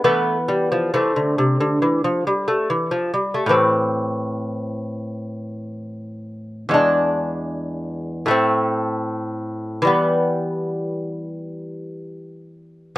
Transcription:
\new Staff \with { instrumentName = "Lute" } { \clef bass \time 4/4 \key a \minor \tempo 4 = 75 << { <e b>4 <a c'>2~ <a c'>8 r8 | <a, e c'>1 | <e, gis d'>2 <a, a c'>2 | <e g b>1 | } \\ { a8 g16 f16 e16 d16 c16 d16 e16 f16 g16 a16 e16 f16 g16 a16 | r1 | r1 | r1 | } >> }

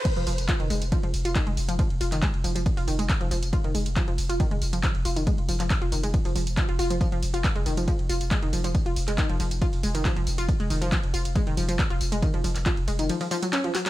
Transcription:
<<
  \new Staff \with { instrumentName = "Synth arpeggio sound" } { \clef bass \time 4/4 \key f \minor \tempo 4 = 138 r16 f16 f16 r16 f'16 ees16 aes16 r16 f16 f16 r16 f'16 ees16 aes16 r16 f16 | f16 r16 f'16 ees16 aes16 r16 f16 f16 r16 f'16 ees16 aes16 r16 f16 f16 r16 | f'16 ees16 aes16 r16 f16 f16 r16 f'16 ees16 aes16 r16 f16 f16 r16 f'16 ees16 | aes16 r16 f16 f16 r16 f'16 ees16 aes16 r16 f16 f16 r16 f16 f'16 f'16 f16 |
f16 f16 r16 f'16 r16 aes16 ees16 f16 f16 r16 f'16 r16 aes16 ees16 f16 f16 | r16 f'16 r16 aes16 ees16 f16 f16 r16 f'16 r16 aes16 ees16 f16 f16 r16 f'16 | r16 aes16 ees16 f16 f16 r16 f'16 r16 aes16 ees16 f16 f16 r16 f'16 r16 aes16 | ees16 f16 f16 r16 f'16 r16 aes16 ees16 f16 f16 f16 ges16 des'16 f16 ges16 ges16 | }
  \new Staff \with { instrumentName = "Sub bass" } { \clef bass \time 4/4 \key f \minor r16 f,,16 f,,16 f,,16 r16 f,,16 f,,16 f,,16 r16 f,,16 f,,16 f,,16 r16 f,,16 f,,16 f,,16 | r16 f,,16 f,,16 f,,16 r16 f,,16 f,,16 f,,16 r16 f,,16 f,,16 f,,16 r16 f,,16 f,,16 f,,16 | r16 f,,16 f,,16 f,,16 r16 f,,16 f,,16 f,,16 r16 f,,16 f,,16 f,,16 r16 f,,16 f,,16 f,,16 | r16 f,,16 f,,16 f,,16 r16 f,,16 f,,16 f,,16 r16 f,,16 f,,16 f,,16 r16 f,,16 f,,16 f,,16 |
r16 f,,16 f,,16 f,,16 r16 f,,16 f,,16 f,,16 r16 f,,16 f,,16 f,,16 r16 f,,16 f,,16 f,,16 | r16 f,,16 f,,16 f,,16 r16 f,,16 f,,16 f,,16 r16 f,,16 f,,16 f,,16 r16 f,,16 f,,16 f,,16 | r16 f,,16 f,,16 f,,16 r16 f,,16 f,,16 f,,16 r16 f,,16 f,,16 f,,16 r16 f,,16 f,,16 f,,16 | r16 f,,16 f,,16 f,,16 r16 f,,16 f,,16 f,,16 r2 | }
  \new DrumStaff \with { instrumentName = "Drums" } \drummode { \time 4/4 <cymc hh bd cymr tamb>16 cymr16 <hho cymr tamb>16 <hh cymr tamb>16 <hc hh bd cymr>16 cymr16 <hho cymr tamb>16 <hh cymr tamb>16 <hh bd cymr tamb>16 cymr16 <hho cymr tamb>16 <hh cymr tamb>16 <hc hh bd cymr tamb>16 cymr16 <hho cymr tamb>16 <hh cymr tamb>16 | <hh bd cymr tamb>16 cymr16 <hho cymr tamb>16 <hc hh cymr tamb>16 <hc hh bd cymr tamb>16 cymr16 <hho cymr tamb>16 <hh cymr tamb>16 <hh bd cymr tamb>16 <hho cymr>16 <hho cymr tamb>16 <hh cymr tamb>16 <hc hh bd cymr tamb>16 cymr16 <hho cymr tamb>16 <hh cymr tamb>16 | <hh bd cymr tamb>16 cymr16 <hho cymr tamb>16 <hh cymr tamb>16 <hc hh bd cymr tamb>16 cymr16 <hho cymr tamb>16 <hh cymr tamb>16 <hh bd cymr tamb>16 cymr16 <hho cymr tamb>16 <hh cymr tamb>16 <hc hh bd cymr tamb>16 cymr16 <hho cymr tamb>16 <hh cymr tamb>16 | <hh bd cymr tamb>16 cymr16 <hho cymr tamb>16 <hc hh cymr tamb>16 <hc hh bd cymr tamb>16 cymr16 <hho cymr tamb>16 <hh cymr tamb>16 <hh bd cymr tamb>16 <hho cymr>16 <hho cymr tamb>16 <hh cymr tamb>16 <hc hh bd cymr tamb>16 cymr16 <hho cymr tamb>16 <hh cymr tamb>16 |
<hh bd cymr tamb>16 cymr16 <hho cymr tamb>16 <hh cymr tamb>16 <hc hh bd cymr tamb>16 cymr16 <hho cymr tamb>16 <hh cymr tamb>16 <hh bd cymr tamb>16 cymr16 <hho cymr tamb>16 <hh cymr tamb>16 <hc hh bd cymr tamb>16 cymr16 <hho cymr tamb>16 <hh cymr tamb>16 | <hh bd cymr tamb>16 cymr16 <hho cymr tamb>16 <hc hh cymr tamb>16 <hc hh bd cymr tamb>16 cymr16 <hho cymr tamb>16 <hh cymr tamb>16 <hh bd cymr tamb>16 <hho cymr>16 <hho cymr tamb>16 <hh cymr tamb>16 <hc hh bd cymr tamb>16 cymr16 <hho cymr tamb>16 <hh cymr tamb>16 | <hh bd cymr tamb>16 cymr16 <hho cymr tamb>16 <hh cymr tamb>16 <hc hh bd cymr tamb>16 cymr16 <hho cymr tamb>16 <hh cymr tamb>16 <hh bd cymr tamb>16 cymr16 <hho cymr tamb>16 <hh cymr tamb>16 <hc hh bd cymr tamb>16 cymr16 <hho cymr tamb>16 <hh cymr tamb>16 | <hh bd cymr tamb>16 cymr16 <hho cymr tamb>16 <hc hh cymr tamb>16 <hc hh bd cymr tamb>16 cymr16 <hho cymr tamb>16 <hh cymr tamb>16 <hh cymr tamb>16 <hho cymr>16 <hho cymr tamb>16 <hh cymr tamb>16 <hc hh cymr tamb>16 cymr16 <hc hho cymr tamb>16 <hc hh cymr tamb>16 | }
>>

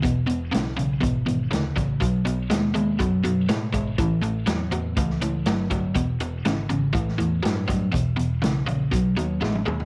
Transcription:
<<
  \new Staff \with { instrumentName = "Overdriven electric guitar" } { \clef bass \time 4/4 \key e \major \tempo 4 = 122 <e, b,>8 <e, b,>8 <e, cis>8 <e, cis>8 <e, b,>8 <e, b,>8 <e, cis>8 <e, cis>8 | <b, fis>8 <b, fis>8 <b, gis>8 <b, gis>8 <b, fis>8 <b, fis>8 <b, gis>8 <b, gis>8 | <a, e>8 <a, e>8 <a, fis>8 <a, fis>8 <a, e>8 <a, e>8 <a, fis>8 <a, fis>8 | <e, b,>8 <e, b,>8 <e, cis>8 <e, cis>8 <a, e>8 <a, e>8 <a, fis>8 <a, fis>8 |
<e, b,>8 <e, b,>8 <e, cis>8 <e, cis>8 <b, fis>8 <b, fis>8 <b, gis>8 <b, gis>8 | }
  \new Staff \with { instrumentName = "Picked electric bass" } { \clef bass \time 4/4 \key e \major e,,8 e,,8 b,,8 b,,8 gis,,8 gis,,8 d,8 a,,8 | b,,8 b,,8 dis,8 dis,8 fis,8 fis,8 a,8 gis,,8 | a,,8 a,,8 e,8 e,8 cis,8 cis,8 g,,8 g,,8 | e,,8 e,,8 gis,,8 gis,,8 a,,8 e,8 g,8 g,8 |
e,,8 e,,8 b,,8 ais,,8 b,,8 dis,8 a,,8 dis,8 | }
  \new DrumStaff \with { instrumentName = "Drums" } \drummode { \time 4/4 <hh bd>8 hh8 <hh sn>16 sn16 hh8 <hh bd>8 hh8 <hh sn>8 <hh bd>8 | <hh bd>8 hh8 <hh sn>8 hh8 <hh bd>8 hh8 <hh sn>8 <hh bd>8 | <hh bd>8 hh8 <hh sn>8 hh8 <hh bd>16 sn16 hh8 <hh sn>8 <hh bd>8 | <hh bd>8 hh8 <hh sn>8 hh8 <hh bd>16 sn16 hh8 <hh sn>8 <hh bd>8 |
<hh bd>8 hh8 <hh sn>8 hh8 <hh bd>8 hh8 sn16 tommh16 toml16 tomfh16 | }
>>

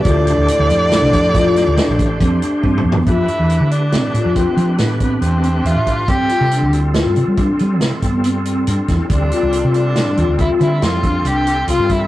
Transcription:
<<
  \new Staff \with { instrumentName = "Violin" } { \time 7/4 \key d \dorian \tempo 4 = 139 d''1. r4 | e'4. d'4. c'4 b8 b8 c'4 f'4 | g'4. r1 r4. | d'4. d'4. e'8 e'8 f'4 g'4 f'8 e'8 | }
  \new Staff \with { instrumentName = "Tonewheel organ" } { \time 7/4 \key d \dorian <a d' g' c''>1.~ <a d' g' c''>4 | <a d' g' b'>1.~ <a d' g' b'>4 | <g c' f' a'>1.~ <g c' f' a'>4 | <g c' f' a'>1.~ <g c' f' a'>4 | }
  \new Staff \with { instrumentName = "Vibraphone" } { \time 7/4 \key d \dorian f'8 d'8 r4 d'4 f'8 f'8 d'4 c'8 d'8 c'8 b8 | f'8 r8 e'4 c'8 f'8 f'4 e'8 c'8 c'4 e''4 | c'8 f'8 d'8 e'8 f'8 f'8 d'8 c'4 b8 c'8 c'8 d'8 e'8 | g'8 f'8 f'4 d'8 f'8 f'4 e'8 d'8 d'4 f'4 | }
  \new Staff \with { instrumentName = "Trombone" } { \clef bass \time 7/4 \key d \dorian a,1. r4 | r1. r4 | r1. r4 | r1. r4 | }
  \new Staff \with { instrumentName = "Fretless electric bass" } { \clef bass \time 7/4 \key d \dorian d,8. d,16 r16 d,16 f,8. c,16 f,4~ f,16 d,16 r16 a,,8. f,8 r8 g,8 f,8 | f,8 r16 e,8 d4 a,16 a,16 f,8 r16 f8 a,4 e,4 e,16 a,8. | g,8 r16 c8 d,4 g,16 c16 g8 r16 g8 c16 r16 g,4. g,16 r16 e,16 r16 | d,8 r16 c,8 c4 g,16 f,16 d,8 r16 d8 f,4 c,4 c,16 g,8. | }
  \new DrumStaff \with { instrumentName = "Drums" } \drummode { \time 7/4 <hh bd>8 hh8 hh8 hh8 <hh sn>8 <hh bd>8 <hh bd>8 <hh sn>8 <hh sn>8 <hh bd>8 <hh bd>8 hh8 \tuplet 3/2 { bd8 toml8 tomfh8 } | <hh bd>8 hh8 hh8 hh8 <hh sn>8 hh8 <hh bd>8 hh8 <hh sn>8 <hh bd>8 hh8 hh8 hh8 <hh bd>8 | <hh bd>8 hh8 hh8 hh8 <hh sn>8 hh8 <hh bd>8 hh8 <hh sn>8 <hh bd>8 hh8 hh8 hh8 <hh bd sn>8 | <hh bd>8 hh8 hh8 hh8 <hh sn>8 hh8 <hh bd>8 hh8 <hh sn>8 <hh bd>8 hh8 hh8 hh8 <hh bd>8 | }
>>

